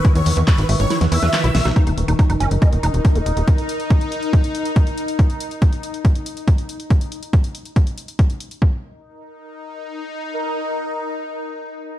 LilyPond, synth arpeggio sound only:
\new Staff \with { instrumentName = "Synth arpeggio sound" } { \time 4/4 \key fes \lydian \tempo 4 = 140 e'16 r8. b'16 r16 e''16 r16 e'16 r16 e'16 b'16 r16 e'16 e''16 ees'16 | ees'16 ees'16 r16 ees'16 ees'16 ees'16 des'16 r16 ees''16 r16 ees'16 r8 bes'16 r8 | r1 | r1 |
r1 | r1 | r1 | }